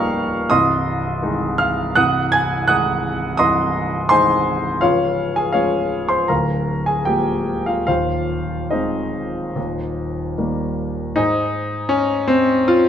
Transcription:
Already playing: C#1 C#2 G3 A#3 D#4 A#4 F5 G5 A#5 C#6 F6
0.50 C1 C2 D#5 C6 D#6
1.23 D#3 G#3 D#4
1.58 F5 F6
1.95 C1 C2 F#5 D#6 F#6
2.32 G#5 G#6
2.68 D#3 G#3 D#4 F#5 D#6 F#6
3.37 C1 C2 D#5 C6 D#6
4.09 D#3 G#3 D#4 C5 G#5 C6
4.81 C#1 C#2 F4 C#5 F5
5.36 G#4 G#5
5.53 F3 G#3 C#4 F4 C#5 F5
6.09 C5 C6
6.28 D1 D2 A#4 F5 A#5
6.86 G#4 G#5
7.05 F3 G#3 A#3 G4 G5
7.66 F4 F5
7.87 D#1 D#2 F4 C5 F5
8.71 D#3 G#3 C4 D#4 C5 D#5
9.56 D#1 D#2
10.38 D#3 G3 A#3
11.16 G#2 D#4 G#4 C5 G#5
11.89 C#4
12.28 C4
12.68 F4

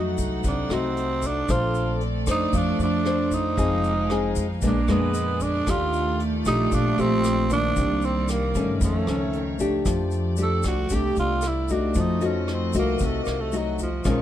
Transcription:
Already playing: F2 F#3 A3 D#4 F#4 A4 F#5
0.18 C2, kick, closed hi-hat, shaker
0.44 C2 C3 D4, kick, closed hi-hat, shaker
0.69 C2 A3 D#4 F#4, cross-stick, closed hi-hat, shaker
0.74 C4
0.97 closed hi-hat
1.22 kick, closed hi-hat, shaker
1.27 D4
1.48 A#1 A3 C4 D4 F4 A4 C5 D5, kick, cross-stick, closed hi-hat, shaker
1.75 closed hi-hat, shaker
2.01 closed hi-hat
2.27 F2 D4 A4 C5, kick, cross-stick, shaker
2.31 D#4
2.53 F2 F3, kick, closed hi-hat, shaker
2.57 D4
2.79 F2, closed hi-hat, shaker
2.83 D4
3.05 D4 A4 C5, cross-stick, closed hi-hat
3.31 D#4, kick, closed hi-hat, shaker
3.58 F1 F3 G#3 C4 D#4 G#4 F5, kick, closed hi-hat, shaker
3.84 closed hi-hat, shaker
4.10 C4 D#4 G#4, cross-stick, closed hi-hat
4.36 F2, kick, closed hi-hat, shaker
4.61 A#1 A#2 G#3 A#3 B3 D4 G#4 B4 D5, kick, closed hi-hat, shaker
4.67 D4
4.88 F2 G#3 B3 D4, cross-stick, closed hi-hat, shaker
5.14 G#3, closed hi-hat, shaker
5.40 D4, kick, closed hi-hat, shaker
5.67 D#2 D#3 A3 D4 F4 G4, kick, cross-stick, closed hi-hat, shaker
5.93 closed hi-hat, shaker
6.20 closed hi-hat
6.45 A#1 A3 D4 D#4 G4, kick, cross-stick, closed hi-hat, shaker
6.72 A#1 A#2 D4, kick, closed hi-hat, shaker
6.98 A#1 A3 C4 D4 G4, closed hi-hat, shaker
7.24 cross-stick, closed hi-hat, shaker
7.50 D#3 A#3 D4, kick, closed hi-hat, shaker
7.76 C2 C3 G3 A#3 D5, kick, closed hi-hat, shaker
8.02 C4, closed hi-hat, shaker
8.28 A#3, cross-stick, closed hi-hat, shaker
8.55 G2 D#3 A3 C#4, kick, closed hi-hat, shaker
8.80 F2 F3 A3 D#4 C#5, kick, closed hi-hat, shaker
8.84 A3
9.07 C#2 D#3 A3 C#4, cross-stick, closed hi-hat, shaker
9.33 D#3, closed hi-hat
9.59 A3 D4 G4, kick, closed hi-hat, shaker
9.86 F2 F3 A3 G4 D5, kick, cross-stick, closed hi-hat, shaker
10.11 closed hi-hat, shaker
10.37 A3 D4 G4, closed hi-hat, shaker
10.43 A4
10.63 C2, kick, cross-stick, closed hi-hat, shaker
10.68 F#4
10.89 C2 C3 A3 D4 G4, kick, closed hi-hat, shaker
10.95 G4
11.16 C2 F4, closed hi-hat, shaker
11.41 cross-stick, closed hi-hat, shaker
11.48 E4
11.68 A3 D4 D#4 F#4, kick, closed hi-hat, shaker
11.94 F2 F3 F#4 D#5, kick, closed hi-hat, shaker
12.00 D#4
12.21 A3 D#4 F#4, closed hi-hat, shaker
12.26 C#4
12.48 cross-stick, closed hi-hat
12.54 C4
12.73 C2 A3 D#4 F#4, kick, closed hi-hat, shaker
12.79 A#3
12.99 C2 C3, kick, closed hi-hat, shaker
13.05 A3
13.23 C2 A#3, cross-stick, closed hi-hat, shaker
13.40 A3
13.52 A3 D#4 F#4, closed hi-hat, shaker
13.58 F#3
13.79 F3, kick, closed hi-hat, shaker
14.04 A#1 A#2 F3 G#3 A#3 C#4 G#4 C#6, kick, cross-stick, closed hi-hat, shaker
14.09 D#3

